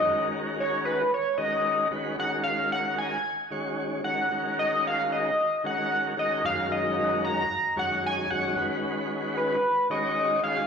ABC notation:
X:1
M:4/4
L:1/8
Q:"Swing 16ths" 1/4=112
K:F#
V:1 name="Analog synth lead"
d z c B c d2 z | f e f g2 z2 f- | f d e d2 f2 d | e d2 a2 f g f- |
f z2 B2 d2 e |]
V:2 name="Tonewheel organ"
[D,G,CFA]4 z [D,G,CFA]2 [D,G,CFB] | [D,G,CFA]4 z [D,G,CFc]2 [D,G,CFA] | [D,G,CFA]4 z [D,G,CFA]2 [D,G,CFA] | [F,,D,G,CFA]4 z [F,,D,G,CFc]2 [F,,D,G,CFc] |
[D,G,CFB]4 z [D,G,CFc]2 [D,G,CFG] |]